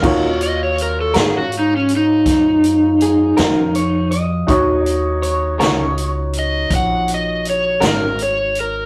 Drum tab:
CC |x-----------|------------|
HH |-xxxxxxxxxxx|xxxxxxxxxxxx|
SD |---o--o--o--|---o-----o--|
BD |o-----o-----|o-----o-----|